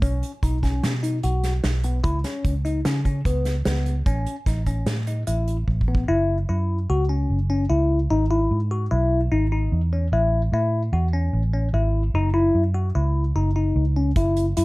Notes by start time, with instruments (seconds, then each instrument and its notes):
0.02 fingered electric bass B1, tine electric piano C#4, kick, closed hi-hat
0.23 closed hi-hat
0.43 fingered electric bass B1, tine electric piano D#4, kick, closed hi-hat
0.63 tine electric piano C#4, kick, snare, closed hi-hat
0.83 fingered electric bass B2, snare, closed hi-hat
1.03 tine electric piano D#4, closed hi-hat
1.23 fingered electric bass B1, tine electric piano F#4, closed hi-hat
1.44 snare, closed hi-hat
1.64 fingered electric bass B1, snare, closed hi-hat
1.84 tine electric piano B3, closed hi-hat
2.04 fingered electric bass C#2, tine electric piano E4, kick, closed hi-hat
2.24 tine electric piano C#4, snare, closed hi-hat
2.45 fingered electric bass C#2, kick, closed hi-hat
2.65 tine electric piano D#4, closed hi-hat
2.85 fingered electric bass C#3, tine electric piano C#4, snare, closed hi-hat
3.05 tine electric piano C#4, kick, closed hi-hat
3.25 fingered electric bass C#2, tine electric piano B3, kick, closed hi-hat
3.45 snare, closed hi-hat
3.65 fingered electric bass C#2, tine electric piano B3, snare, closed hi-hat
3.86 closed hi-hat
4.06 fingered electric bass A1, tine electric piano C#4, kick, closed hi-hat
4.26 closed hi-hat
4.46 fingered electric bass A1, tine electric piano D#4, kick, snare, closed hi-hat
4.66 tine electric piano C#4, kick, closed hi-hat
4.86 fingered electric bass A2, snare, closed hi-hat
5.07 tine electric piano D#4, closed hi-hat
5.27 fingered electric bass A1, tine electric piano E4, closed hi-hat
5.48 closed hi-hat
5.68 fingered electric bass A1, kick
5.81 kick
5.88 tine electric piano B3
5.95 kick
6.08 fingered electric bass F#1, tine electric piano E4
6.49 fingered electric bass F#2, tine electric piano E4
6.90 fingered electric bass C#2, tine electric piano F#4
7.09 tine electric piano C#4
7.30 fingered electric bass F#1
7.50 tine electric piano C#4
7.70 fingered electric bass C#2, tine electric piano E4
8.10 fingered electric bass G#1, tine electric piano D#4
8.31 tine electric piano E4
8.51 fingered electric bass G#2
8.71 tine electric piano F#4
8.91 fingered electric bass B1, tine electric piano E4
9.32 fingered electric bass G#1, tine electric piano D#4
9.52 tine electric piano D#4
9.72 fingered electric bass E2
9.93 tine electric piano C#4
10.12 fingered electric bass A1, tine electric piano E4
10.52 fingered electric bass A2, tine electric piano E4
10.93 fingered electric bass E2, tine electric piano F#4
11.13 tine electric piano C#4
11.33 fingered electric bass A1
11.53 tine electric piano C#4
11.73 fingered electric bass G#1, tine electric piano E4
12.14 fingered electric bass F#1, tine electric piano D#4
12.34 tine electric piano E4
12.55 fingered electric bass F#2
12.75 tine electric piano F#4
12.95 fingered electric bass C#2, tine electric piano E4
13.35 fingered electric bass F#1, tine electric piano D#4
13.56 tine electric piano D#4
13.76 fingered electric bass C#2
13.96 tine electric piano C#4
14.16 fingered electric bass F#1, tine electric piano E4, kick, closed hi-hat
14.36 closed hi-hat
14.57 fingered electric bass F#2, tine electric piano E4, closed hi-hat